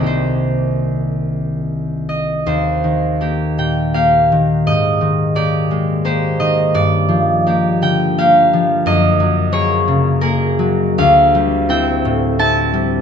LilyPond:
<<
  \new Staff \with { instrumentName = "Harp" } { \time 3/4 \key c \minor \tempo 4 = 84 <c'' d'' ees'' g''>2~ <c'' d'' ees'' g''>8 ees''8 | \key ees \major c''4. g''8 f''4 | ees''4 d''4 c''8 ees''8 | d''4. g''8 f''4 |
ees''4 des''4 bes'4 | \key d \phrygian f''4 g''4 a''4 | }
  \new Staff \with { instrumentName = "Harp" } { \time 3/4 \key c \minor << { <c, ees bes c' g'>2.~ | \key ees \major <c, ees bes c' g'>2.~ | <c, ees bes c' g'>2. | r2. |
r2. | \key d \phrygian r2. | } \\ { r2. | ees,8 ees8 <bes g'>8 bes,8 <bes g'>8 ees8 | aes,8 ees8 <bes g'>8 aes8 <bes g'>8 ees8 | g,8 f8 <bes g'>8 d8 <bes g'>8 f8 |
ges,8 ges8 <bes aes'>8 des8 <bes aes'>8 ges8 | d,8 g8 <c' e'>8 a,8 <c' e'>8 g8 | } >> }
>>